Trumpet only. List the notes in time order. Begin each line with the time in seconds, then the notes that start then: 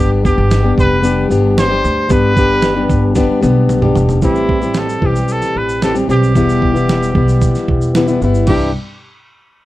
0.00 G4
0.25 G4
0.79 B4
1.59 C5
2.12 B4
4.24 E4
4.78 A4
5.06 G4
5.32 A4
5.57 B4
5.84 A4
6.11 G4
8.47 G4